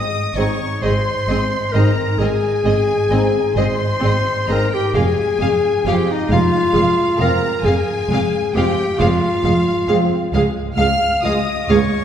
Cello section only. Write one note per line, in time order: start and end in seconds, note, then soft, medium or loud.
0.37 0.45 G#2 medium
0.83 0.91 G#2 medium
1.29 1.37 G#2 medium
1.74 1.82 G#2 medium
2.21 2.29 G#2 medium
2.65 2.73 G#2 medium
3.11 3.19 G#2 medium
3.57 3.65 G#2 medium
4.04 4.12 G#2 medium
4.48 4.56 G#2 medium
4.96 5.04 F2 medium
5.42 5.50 F2 medium
5.87 5.95 F2 medium
6.32 6.40 F2 medium
6.76 6.84 F2 medium
7.21 7.29 F2 medium
7.66 7.74 F2 medium
8.11 8.19 F2 medium
8.56 8.64 F2 medium
9.01 9.09 F2 medium
9.46 9.54 F2 medium
9.89 9.97 F2 medium
10.33 10.41 C#2 medium
10.78 10.86 C#2 medium
11.24 11.32 C#2 medium
11.70 11.78 C#2 medium